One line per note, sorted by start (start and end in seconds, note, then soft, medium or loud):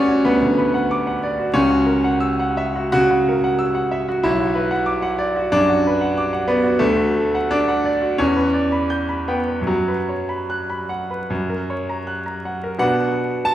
0.00 0.22 D2 medium
0.00 0.25 B3 medium
0.00 0.25 C#4 loud
0.00 0.08 F#4 soft
0.00 0.58 B4 soft
0.00 0.20 D5 medium
0.00 0.74 F#5 medium
0.00 0.91 D6 medium
0.08 0.35 F#4 medium
0.25 1.50 D2 medium
0.25 0.90 B3 medium
0.42 0.68 D3 medium
0.58 0.84 B4 medium
0.74 1.00 F#5 medium
0.91 1.17 D6 medium
1.07 1.32 F#5 medium
1.23 1.49 D5 medium
1.38 1.55 F#4 medium
1.54 2.90 C#2 medium
1.54 2.93 C#4 loud
1.70 1.97 F#4 medium
1.86 2.14 A#4 medium
2.04 2.32 F#5 medium
2.20 2.49 E6 medium
2.39 2.69 F#5 medium
2.57 2.87 E5 medium
2.76 2.91 F#4 medium
2.92 3.21 C#3 medium
2.92 3.09 F#4 loud
3.11 3.37 F#4 soft
3.29 3.54 A#4 medium
3.44 3.69 F#5 medium
3.59 3.85 E6 medium
3.75 4.01 F#5 medium
3.92 4.17 E5 medium
4.09 4.24 F#4 medium
4.23 5.48 B1 medium
4.23 5.52 E4 loud
4.40 4.64 F#4 medium
4.55 4.80 B4 medium
4.71 4.96 F#5 medium
4.86 5.12 D6 medium
5.02 5.28 F#5 medium
5.19 5.45 D5 medium
5.36 5.62 F#4 medium
5.52 5.79 F#2 medium
5.52 6.49 D4 loud
5.69 5.95 F#4 medium
5.87 6.11 B4 medium
6.01 6.27 F#5 medium
6.17 6.42 D6 medium
6.33 6.58 F#5 medium
6.48 6.80 B3 medium
6.48 6.74 D5 medium
6.63 6.80 F#4 medium
6.79 8.14 D2 medium
6.79 7.50 A3 loud
6.96 7.26 F#4 medium
7.16 7.45 A4 medium
7.35 7.62 F#5 medium
7.51 8.18 D4 loud
7.51 7.78 D6 medium
7.68 7.95 F#5 medium
7.85 8.12 D5 medium
8.02 8.18 F#4 medium
8.18 9.64 E2 medium
8.18 9.28 C#4 medium
8.36 8.65 B4 soft
8.53 8.83 D5 medium
8.72 9.02 B5 medium
8.90 9.20 G6 medium
9.09 9.40 B5 soft
9.28 9.67 B3 medium
9.28 9.60 G5 medium
9.48 9.68 B4 soft
9.61 11.22 F#2 medium
9.67 12.45 F#3 medium
9.88 10.21 B4 soft
10.09 10.41 C#5 soft
10.29 10.62 B5 soft
10.50 10.82 F#6 medium
10.70 11.02 B5 medium
10.89 11.21 F#5 medium
11.10 11.30 B4 soft
11.30 12.77 F#2 medium
11.50 11.80 A#4 soft
11.70 12.00 C#5 soft
11.89 12.19 A#5 soft
12.07 12.37 F#6 soft
12.26 12.56 A#5 soft
12.45 12.74 F#5 soft
12.64 12.80 A#4 soft
12.78 13.54 B2 medium
12.78 13.54 B3 medium
12.78 13.54 D4 medium
12.78 13.54 F#4 medium
12.78 13.46 F#5 loud
13.45 13.54 A5 loud